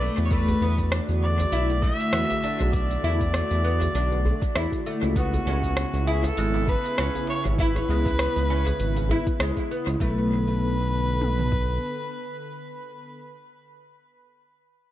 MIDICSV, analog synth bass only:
0, 0, Header, 1, 2, 480
1, 0, Start_track
1, 0, Tempo, 606061
1, 245, Time_signature, 4, 2, 24, 8
1, 11815, End_track
2, 0, Start_track
2, 0, Title_t, "Analog synth bass"
2, 0, Program_c, 0, 38
2, 141, Note_on_c, 0, 40, 94
2, 432, Note_off_c, 0, 40, 0
2, 487, Note_on_c, 0, 40, 94
2, 793, Note_off_c, 0, 40, 0
2, 862, Note_on_c, 0, 40, 95
2, 1152, Note_off_c, 0, 40, 0
2, 1205, Note_on_c, 0, 35, 83
2, 1512, Note_off_c, 0, 35, 0
2, 1684, Note_on_c, 0, 40, 84
2, 1777, Note_off_c, 0, 40, 0
2, 2063, Note_on_c, 0, 35, 77
2, 2353, Note_off_c, 0, 35, 0
2, 2405, Note_on_c, 0, 40, 103
2, 2712, Note_off_c, 0, 40, 0
2, 2780, Note_on_c, 0, 40, 96
2, 3072, Note_off_c, 0, 40, 0
2, 3126, Note_on_c, 0, 35, 80
2, 3432, Note_off_c, 0, 35, 0
2, 3606, Note_on_c, 0, 40, 89
2, 3698, Note_off_c, 0, 40, 0
2, 3980, Note_on_c, 0, 37, 82
2, 4272, Note_off_c, 0, 37, 0
2, 4327, Note_on_c, 0, 37, 100
2, 4633, Note_off_c, 0, 37, 0
2, 4702, Note_on_c, 0, 37, 95
2, 4992, Note_off_c, 0, 37, 0
2, 5049, Note_on_c, 0, 32, 84
2, 5354, Note_off_c, 0, 32, 0
2, 5531, Note_on_c, 0, 37, 85
2, 5621, Note_off_c, 0, 37, 0
2, 5905, Note_on_c, 0, 32, 79
2, 6194, Note_off_c, 0, 32, 0
2, 6247, Note_on_c, 0, 37, 99
2, 6553, Note_off_c, 0, 37, 0
2, 6624, Note_on_c, 0, 37, 92
2, 6913, Note_off_c, 0, 37, 0
2, 6967, Note_on_c, 0, 32, 84
2, 7272, Note_off_c, 0, 32, 0
2, 7440, Note_on_c, 0, 37, 93
2, 7535, Note_off_c, 0, 37, 0
2, 7817, Note_on_c, 0, 37, 90
2, 7890, Note_off_c, 0, 37, 0
2, 7923, Note_on_c, 0, 35, 94
2, 9332, Note_off_c, 0, 35, 0
2, 11815, End_track
0, 0, End_of_file